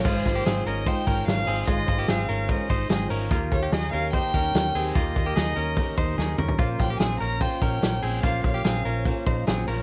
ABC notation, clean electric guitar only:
X:1
M:4/4
L:1/16
Q:1/4=146
K:Bbdor
V:1 name="Clean electric guitar"
[A,F]3 [B,G] [CA]2 [DB]2 [Ec]2 [DB]4 [CA]2 | [A,F]3 [B,G] [CA]2 [DB]4 [Ec]2 [CA]2 [DB]2 | [B,F]3 [B,G] [EA]2 [DB]2 [Ec]2 [DB]4 [CA]2 | [B,F]3 [B,G] [EA]2 [DB]4 [Ec]2 [EA]2 [DB]2 |
[B,F]3 [B,G] [CA]2 [DB]2 [Fc]2 [DB]4 [CA]2 | [B,F]3 [B,G] [CA]2 [DB]4 [Ec]2 [CA]2 [DB]2 |]